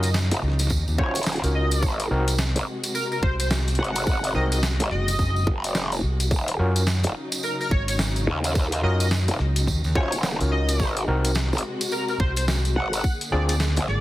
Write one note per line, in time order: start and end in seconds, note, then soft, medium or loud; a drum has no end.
0.00 0.29 F#2 loud
0.00 1.79 C#3 medium
0.00 1.79 F#3 medium
0.00 1.79 D#4 medium
0.00 0.10 D#5 medium
0.00 closed hi-hat medium
0.00 tambourine medium
0.14 snare loud
0.14 tambourine medium
0.31 0.41 D#1 loud
0.31 snare medium
0.31 closed hi-hat medium
0.31 tambourine soft
0.42 0.69 C#2 medium
0.42 snare soft
0.48 snare soft
0.52 snare soft
0.59 snare soft
0.59 closed hi-hat medium
0.59 tambourine medium
0.61 snare soft
0.67 0.85 D#2 loud
0.67 kick medium
0.67 snare soft
0.67 tambourine medium
0.88 0.97 D#2 loud
0.88 tambourine soft
0.98 1.41 D#1 medium
0.98 1.15 C#4 loud
0.98 1.15 F4 medium
0.98 1.15 F#4 medium
0.98 1.15 C5 loud
0.98 1.19 C#5 loud
0.98 kick loud
1.15 closed hi-hat medium
1.15 tambourine medium
1.17 closed hi-hat medium
1.23 snare loud
1.23 closed hi-hat soft
1.23 tambourine medium
1.27 closed hi-hat soft
1.32 closed hi-hat soft
1.36 closed hi-hat soft
1.43 1.81 C#2 loud
1.43 1.81 C#4 medium
1.43 1.81 F4 medium
1.43 1.81 F#4 medium
1.43 1.81 A#4 medium
1.43 closed hi-hat soft
1.43 tambourine soft
1.55 1.90 D#5 loud
1.71 closed hi-hat medium
1.71 tambourine medium
1.82 2.09 G#1 loud
1.82 6.27 C3 medium
1.82 6.27 G#3 medium
1.82 6.27 F#4 medium
1.82 kick loud
1.82 tambourine medium
2.00 closed hi-hat medium
2.00 tambourine soft
2.10 2.53 C2 loud
2.10 2.33 C4 medium
2.10 2.33 D#4 medium
2.10 2.33 F#4 medium
2.10 2.33 A#4 loud
2.28 closed hi-hat medium
2.28 tambourine medium
2.38 snare loud
2.38 tambourine medium
2.55 2.65 G#1 loud
2.55 closed hi-hat medium
2.55 tambourine soft
2.83 closed hi-hat medium
2.83 tambourine medium
2.94 3.06 A#4 medium
2.94 tambourine medium
3.12 3.19 A#4 medium
3.12 tambourine soft
3.23 3.77 C2 medium
3.23 3.34 C5 medium
3.23 kick loud
3.40 3.47 C5 medium
3.40 closed hi-hat medium
3.40 tambourine medium
3.50 snare loud
3.50 snare soft
3.50 tambourine medium
3.68 closed hi-hat soft
3.68 tambourine soft
3.75 4.33 G#1 loud
3.75 4.33 F#5 medium
3.75 closed hi-hat soft
3.84 closed hi-hat soft
3.96 closed hi-hat medium
3.96 tambourine medium
4.07 kick loud
4.07 tambourine medium
4.24 closed hi-hat medium
4.24 tambourine soft
4.35 4.77 C2 loud
4.35 4.58 C4 loud
4.35 4.58 D#4 medium
4.35 4.58 F#4 medium
4.35 4.58 A#4 loud
4.35 4.46 D#5 medium
4.52 4.59 D#5 medium
4.52 closed hi-hat medium
4.52 tambourine medium
4.63 snare loud
4.63 tambourine medium
4.80 4.89 G#1 loud
4.80 snare medium
4.80 closed hi-hat medium
4.80 tambourine soft
4.91 5.17 F#1 loud
4.91 5.47 D#5 medium
4.91 snare soft
5.08 closed hi-hat medium
5.08 tambourine medium
5.19 5.45 F#1 loud
5.19 kick medium
5.19 tambourine medium
5.36 tambourine soft
5.47 6.01 F#1 loud
5.47 kick loud
5.64 closed hi-hat medium
5.64 tambourine medium
5.75 snare loud
5.75 tambourine medium
5.92 closed hi-hat soft
5.92 tambourine soft
6.03 6.29 C2 medium
6.20 closed hi-hat medium
6.20 tambourine medium
6.31 6.57 D#1 loud
6.31 10.76 C#3 medium
6.31 10.76 F#3 medium
6.31 10.76 D#4 medium
6.31 kick loud
6.31 tambourine medium
6.48 closed hi-hat medium
6.48 tambourine soft
6.59 7.02 F#2 medium
6.59 6.82 C#4 medium
6.59 6.82 F4 medium
6.59 6.82 F#4 medium
6.59 6.82 A#4 loud
6.76 closed hi-hat medium
6.76 tambourine medium
6.87 snare loud
6.87 tambourine medium
7.03 7.13 D#1 loud
7.03 closed hi-hat medium
7.03 tambourine soft
7.32 closed hi-hat medium
7.32 tambourine medium
7.43 7.54 A#4 medium
7.43 tambourine medium
7.60 7.67 A#4 medium
7.60 tambourine soft
7.71 8.26 G#1 medium
7.71 7.82 C#5 medium
7.71 kick loud
7.88 7.95 C#5 medium
7.88 closed hi-hat medium
7.88 tambourine medium
7.99 snare loud
7.99 snare soft
7.99 tambourine medium
8.16 closed hi-hat soft
8.16 tambourine soft
8.27 8.82 D#2 loud
8.44 closed hi-hat medium
8.44 tambourine medium
8.55 kick loud
8.55 tambourine medium
8.72 closed hi-hat medium
8.72 tambourine soft
8.83 9.26 F#2 medium
8.83 9.06 C#4 loud
8.83 9.06 F4 medium
8.83 9.06 F#4 medium
8.83 9.06 A#4 loud
8.83 8.94 D#5 medium
9.00 9.08 D#5 medium
9.00 closed hi-hat medium
9.00 tambourine medium
9.11 snare loud
9.11 tambourine medium
9.28 9.38 D#1 loud
9.28 snare medium
9.28 closed hi-hat medium
9.28 tambourine soft
9.39 9.66 C#2 medium
9.39 snare soft
9.56 closed hi-hat medium
9.56 tambourine medium
9.67 9.82 D#2 loud
9.67 kick medium
9.67 tambourine medium
9.84 9.94 D#2 loud
9.84 tambourine soft
9.95 10.38 D#1 loud
9.95 10.12 C#4 loud
9.95 10.12 F4 medium
9.95 10.12 F#4 medium
9.95 10.12 C5 loud
9.95 10.16 C#5 medium
9.95 kick loud
10.12 closed hi-hat medium
10.12 tambourine medium
10.23 snare loud
10.23 tambourine medium
10.41 10.78 C#2 loud
10.41 10.78 C#4 medium
10.41 10.78 F4 medium
10.41 10.78 F#4 medium
10.41 10.78 A#4 medium
10.41 closed hi-hat soft
10.41 tambourine soft
10.51 10.87 D#5 loud
10.69 closed hi-hat medium
10.69 tambourine medium
10.80 11.06 G#1 loud
10.80 13.02 C3 medium
10.80 13.02 G#3 medium
10.80 13.02 F#4 medium
10.80 kick loud
10.80 tambourine medium
10.97 closed hi-hat medium
10.97 tambourine soft
11.08 11.50 C2 medium
11.08 11.31 C4 medium
11.08 11.31 D#4 medium
11.08 11.31 F#4 medium
11.08 11.31 A#4 loud
11.25 closed hi-hat medium
11.25 tambourine medium
11.35 snare loud
11.35 tambourine medium
11.53 11.62 G#1 loud
11.53 tambourine soft
11.58 closed hi-hat medium
11.81 closed hi-hat medium
11.81 tambourine medium
11.92 12.03 A#4 medium
11.92 tambourine medium
12.08 12.16 A#4 medium
12.08 tambourine soft
12.20 12.74 C2 medium
12.20 12.31 C5 medium
12.20 kick loud
12.36 12.44 C5 medium
12.36 closed hi-hat medium
12.36 tambourine medium
12.48 snare loud
12.48 snare soft
12.48 tambourine medium
12.65 closed hi-hat soft
12.65 tambourine soft
12.76 13.02 G#1 loud
12.76 13.11 F#5 loud
12.93 closed hi-hat medium
12.93 tambourine medium
13.04 14.01 D3 medium
13.04 14.01 A#3 medium
13.04 14.01 G#4 medium
13.04 kick loud
13.04 tambourine medium
13.21 closed hi-hat medium
13.21 tambourine soft
13.32 13.75 D2 loud
13.32 13.55 C4 loud
13.32 13.55 D4 medium
13.32 13.55 F4 medium
13.32 13.55 G#4 loud
13.32 13.43 D5 medium
13.49 13.56 D5 medium
13.49 closed hi-hat medium
13.49 tambourine medium
13.60 snare loud
13.60 tambourine medium
13.76 13.86 A#1 medium
13.76 snare medium
13.76 closed hi-hat medium
13.76 tambourine soft
13.88 14.01 G#1 medium
13.88 14.01 D5 loud
13.88 snare soft